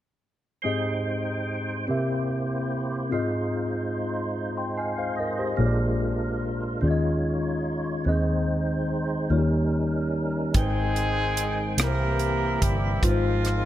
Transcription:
0.62 tine electric piano G#2 C4 G4 G#4 D#5, tonewheel organ G#3 D#4 C5 G5
1.87 tine electric piano C3 C4 G4 A#4 E5, tonewheel organ A#3 E4 G4 C5
3.10 tine electric piano G#2 C4 F4 G#4, tonewheel organ G#3 D#4 F4 C5
3.14 tine electric piano D#5
4.57 tine electric piano G5 C6
4.77 tine electric piano D#5 G#5, tonewheel organ F5
4.98 tine electric piano C5 F5
5.16 tine electric piano A#4 D#5, tonewheel organ D#5
5.39 tine electric piano G4 C5
5.56 fingered electric bass A#1, tine electric piano A#2 A#3 F4 G#4 C#5, tonewheel organ G#3 D4 F4 A#4
5.66 tine electric piano D5
6.81 fingered electric bass D#2, tine electric piano D#3 C#4 F4 G#4 D5, tonewheel organ G#3 D#4 F4 C5
6.87 tonewheel organ C#5, tine electric piano D#5
8.04 fingered electric bass D#2, tine electric piano D#3 C4 D#4 G#4, tonewheel organ G#3 C4 D#4 B4
8.09 tonewheel organ C5, tine electric piano D#5
9.30 fingered electric bass D#2, tine electric piano D#3 A#3 D#4 F4 C#5, tonewheel organ G3 C#4 D#4 A#4
9.38 tine electric piano G4
10.54 fingered electric bass G#1, tine electric piano G#2 G#3 D#4 B4 G5, tonewheel organ D#3 G#3 C4 G5, horn section G#3 C4 D#4 G#4, kick, closed hi-hat
10.63 tine electric piano C5
10.96 closed hi-hat
11.37 closed hi-hat
11.77 fingered electric bass C2, tine electric piano C3 A#3 E4 G4 A#4, horn section A#3 E4 G4 A#4, tonewheel organ C4 G4, cross-stick, closed hi-hat
11.82 tonewheel organ E3 A#3
11.87 tine electric piano C5
12.19 closed hi-hat
12.61 fingered electric bass G1, horn section G3 G4, kick, closed hi-hat
13.02 fingered electric bass G#1, tine electric piano G#2 G#3 D#4 F4 B4, tonewheel organ D#3 G#3 C4 F4, horn section F3 C4 F4, kick, closed hi-hat
13.11 tine electric piano C5
13.45 cross-stick, closed hi-hat

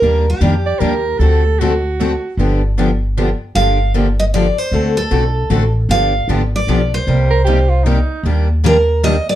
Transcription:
Already playing: steel-string acoustic guitar A#4
0.02 upright bass D#2, steel-string acoustic guitar D#3 G3 A#3 D4 G4
0.30 steel-string acoustic guitar G4
0.41 upright bass F2, steel-string acoustic guitar D#3 G3 A#3 D4 G4
0.66 soprano saxophone D5
0.80 upright bass D#2, steel-string acoustic guitar D#3 G3 A#3 D4 G4, soprano saxophone A#4
1.19 upright bass D2, steel-string acoustic guitar D3 A3 C4 F#4 A4, soprano saxophone A4
1.59 steel-string acoustic guitar D3 A3 C4 F#4 A4, soprano saxophone F#4
2.00 steel-string acoustic guitar D3 A3 C4 F#4 A4
2.37 upright bass G1, steel-string acoustic guitar D3 F3 B3 D4 G4
2.78 steel-string acoustic guitar D3 F3 B3 D4 G4
3.17 steel-string acoustic guitar D3 F3 B3 D4 G4
3.55 upright bass G1, steel-string acoustic guitar D3 F3 A#3 D4 G4 F5
3.94 steel-string acoustic guitar D3 F3 A#3 D4 G4
4.19 steel-string acoustic guitar D#5
4.34 steel-string acoustic guitar D3 F3 A#3 D4 G4 D5
4.58 steel-string acoustic guitar C5
4.72 upright bass D2, steel-string acoustic guitar D3 A3 C4 F#4 A4
4.97 steel-string acoustic guitar A4
5.11 upright bass B1, steel-string acoustic guitar D3 A3 C4 F#4 A4
5.50 upright bass A1, steel-string acoustic guitar D3 A3 C4 F#4 A4
5.89 upright bass G1, steel-string acoustic guitar D3 F3 B3 D4 G4 F5
6.28 upright bass G#1, steel-string acoustic guitar D3 F3 B3 D4 G4
6.56 steel-string acoustic guitar D5
6.67 upright bass B1, steel-string acoustic guitar D3 F3 B3 D4 G4
6.94 steel-string acoustic guitar C5
7.07 upright bass C2, steel-string acoustic guitar C3 G3 A#3 D#4 G4
7.30 soprano saxophone A#4
7.45 steel-string acoustic guitar C3 G3 A#3 D#4 G4, soprano saxophone G4
7.69 soprano saxophone F4
7.84 steel-string acoustic guitar C3 G3 A#3 D#4 G4, soprano saxophone D#4
8.23 upright bass D#2, steel-string acoustic guitar D#3 G3 A#3 D4 G4
8.64 steel-string acoustic guitar D#3 G3 A#3 D4 G4 A#4
9.03 steel-string acoustic guitar D#3 G3 A#3 D4 G4 D#5
9.29 steel-string acoustic guitar D5

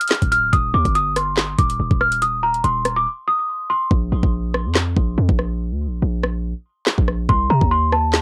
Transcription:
Already playing: celesta F6
0.01 closed hi-hat
0.07 snare, clap, closed hi-hat
0.14 closed hi-hat
0.22 808-style bass D1, kick, closed hi-hat
0.32 celesta F6, closed hi-hat
0.53 808-style bass D#1, celesta D#6, kick, closed hi-hat
0.74 808-style bass D#2, celesta D6
0.85 808-style bass G1, kick, closed hi-hat
0.95 celesta D#6, closed hi-hat
1.16 celesta C6, cross-stick, closed hi-hat
1.37 snare, clap
1.58 808-style bass D#1, celesta D6, kick, closed hi-hat
1.70 closed hi-hat
1.80 808-style bass D#1
1.91 808-style bass D#1, kick
2.01 celesta F6, cross-stick
2.12 closed hi-hat
2.22 celesta D#6, closed hi-hat
2.43 celesta A#5
2.54 closed hi-hat
2.64 808-style bass D#1, celesta C6, closed hi-hat
2.85 cross-stick, closed hi-hat
2.96 celesta D6
3.28 celesta D#6
3.70 celesta C6
3.91 808-style bass A#1, kick
4.12 808-style bass A#1
4.23 808-style bass A#1, kick
4.54 cross-stick
4.66 808-style bass F2
4.75 snare, clap
4.97 808-style bass A#1, kick
5.18 808-style bass F2
5.29 808-style bass A#1, kick
5.39 cross-stick
5.71 808-style bass D2
5.87 808-style bass A#1
6.02 808-style bass A#1
6.23 cross-stick
6.86 snare, clap
6.98 808-style bass A#1, kick
7.08 cross-stick
7.29 808-style bass C2, celesta C6, kick
7.50 808-style bass C3, celesta A#5
7.61 808-style bass D#2, kick
7.71 celesta C6
7.92 celesta A5, cross-stick
8.13 snare, clap

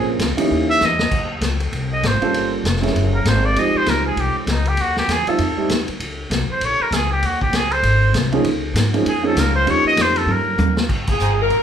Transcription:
Already playing: upright bass A#1, grand piano F3 A#3 C4 C#4 G#4, muted trumpet G#4
0.19 upright bass C#2, snare, hi-hat pedal, ride
0.37 grand piano E3 A#3 C#4 D#4 G4, muted upright bass stroke, ride
0.51 upright bass D#2
0.70 muted trumpet E5
0.80 upright bass E2, snare, hi-hat pedal
0.85 muted trumpet D#5
0.99 snare
1.11 upright bass D#2, kick, crash
1.41 upright bass C#2, snare, hi-hat pedal, ride
1.60 ride
1.72 upright bass C2, ride
1.93 muted trumpet D#5
2.03 upright bass G#1, muted trumpet C5, snare, hi-hat pedal, ride
2.21 grand piano G3 A#3 C#4 F4 A4, muted upright bass stroke, ride
2.33 upright bass G1, ride
2.64 upright bass F1, snare, hi-hat pedal, ride
2.76 snare
2.81 grand piano F#3 A#3 C#4 E4 G#4, ride
2.87 snare
2.95 upright bass F#1, ride
3.15 muted trumpet A#4
3.25 upright bass G#1, muted trumpet C5, snare, hi-hat pedal, ride
3.45 muted trumpet D5
3.55 upright bass F2, grand piano F3 G#3 C4 D#4 G4, muted trumpet D#5, ride
3.74 muted trumpet C5, muted upright bass stroke
3.86 upright bass C#2, muted trumpet A#4, snare, hi-hat pedal, ride
4.06 muted trumpet G#4
4.16 upright bass C2, ride
4.20 muted trumpet G4
4.35 muted trumpet C4, muted upright bass stroke
4.47 upright bass C#2, snare, hi-hat pedal, ride
4.51 muted trumpet D#4
4.65 muted trumpet G4, ride
4.77 upright bass D#2, ride
4.81 muted trumpet F#4
4.96 muted trumpet G4, snare
5.07 upright bass E2, snare, hi-hat pedal, ride
5.12 muted trumpet G#4
5.26 grand piano G3 A3 C4 D#4 F4, muted trumpet A4, muted upright bass stroke, ride
5.38 upright bass F2, ride
5.56 grand piano G3 A3 C4 D#4 G4, muted upright bass stroke
5.69 upright bass D#2, snare, hi-hat pedal, ride
5.88 muted upright bass stroke, ride
6.00 upright bass C#2, ride
6.30 upright bass C2, snare, hi-hat pedal, ride
6.49 muted trumpet C5, muted upright bass stroke
6.60 upright bass A#1, ride
6.65 muted trumpet C#5
6.80 muted trumpet A#4, muted upright bass stroke
6.91 upright bass C#2, muted trumpet G#4, snare, hi-hat pedal, ride
7.12 muted trumpet G4
7.22 upright bass D#2, muted trumpet F#4, ride
7.41 muted trumpet G4, kick
7.52 upright bass C#2, muted trumpet G#4, snare, hi-hat pedal, ride
7.71 muted trumpet C5, ride
7.83 upright bass G#1, ride
8.13 upright bass C2, snare, hi-hat pedal, ride
8.32 grand piano F3 A#3 C#4 D#4 G#4, ride
8.44 upright bass C#2, ride
8.74 upright bass G#2, snare, hi-hat pedal, ride
8.93 grand piano F3 A#3 C#4 D#4 G#4, ride
9.05 upright bass F2, muted trumpet G#4, ride
9.23 grand piano F3 A#3 C#4 D#4 G#4, muted trumpet A4
9.36 upright bass C#2, muted trumpet A#4, snare, hi-hat pedal, ride
9.55 muted trumpet C5
9.66 upright bass D#2, grand piano F3 A#3 C#4 D#4 G4, muted trumpet C#5, ride
9.84 muted trumpet D#5, muted upright bass stroke
9.97 upright bass F2, snare, hi-hat pedal, ride
10.01 muted trumpet C5
10.16 muted trumpet A4, ride
10.26 upright bass G2, high tom
10.31 muted trumpet A#4
10.58 upright bass D#2, hi-hat pedal, high tom
10.77 snare
10.89 upright bass G#1, kick, crash
11.07 saxophone section G#4, kick, crash
11.19 upright bass G1, trumpet section G#4 C5 G5 A#5, hi-hat pedal
11.42 saxophone section A#4
11.50 upright bass A#1, ride

